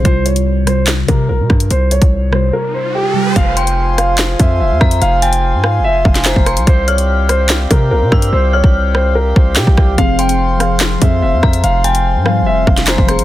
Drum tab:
HH |x-xx--x-x-x----x|x-xx------------|x-xx--x-x-x----x|x-xx-------x--xx|
CP |--------x-------|----------------|--------x-------|------------x---|
SD |------r-o-----r-|------r---------|------r-o-----r-|------r----oo-r-|
BD |o---------o---o-|---o------------|o---------o---o-|----------o--o--|

HH |x-xx--x-x-x----x|----------------|x-xx--x-x-x----x|x-xx-------x--xx|
CP |--------x-------|------------x---|--------x-------|------------x---|
SD |------r-o-----r-|------r-----o-r-|------r-o-----r-|------r----oo-r-|
BD |o---------o---o-|---o------o--oo-|o---------o---o-|----------o--o--|